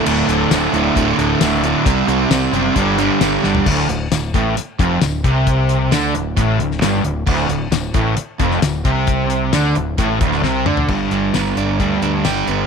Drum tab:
CC |x---------------|----------------|x---------------|----------------|
HH |--x-x-x-x-x-x-x-|x-x-x-x-x-x-x---|--x-x-x-x-x-x-x-|x-x-x-x-x-x-x-x-|
TB |----x-------x---|----x-------x---|----x-------x---|----x-------x---|
SD |----o-------o---|----o-------o-o-|----o-------o---|----o------oo---|
T2 |----------------|----------------|----------------|----------------|
FT |----------------|---------------o|----------------|----------------|
BD |--------o-------|o-------o-------|o-----o---o---o-|o-------o-------|

CC |x---------------|----------------|x---------------|
HH |--x-x-x-x-x-x-x-|x-x-x-x-x-x-----|--x-x-x-x-x-x-x-|
TB |----x-------x---|----x-----------|----x-------x---|
SD |----o------oo---|----o------oo---|----oo------o---|
T2 |----------------|--------------o-|----------------|
FT |----------------|---------------o|----------------|
BD |o-----o---o---o-|o-------o-o-----|o-------o-------|